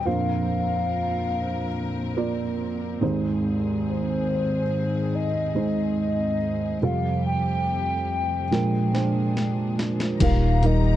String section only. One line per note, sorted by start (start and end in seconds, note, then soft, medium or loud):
0.06 2.99 A#2 medium
0.06 2.99 F3 soft
0.06 6.78 C4 soft
0.06 2.99 A#4 medium
3.02 6.79 G#2 medium
3.02 6.79 D#3 soft
3.02 6.78 G#4 medium
6.81 8.49 F2 medium
6.81 10.17 F3 soft
6.81 8.49 A3 soft
6.81 8.49 G4 medium
8.51 10.19 A#2 soft
8.51 10.19 D4 soft
8.51 10.19 G#4 medium
10.19 10.96 D#3 medium
10.19 10.96 D#4 medium
10.19 10.96 G4 medium
10.19 10.96 A#5 medium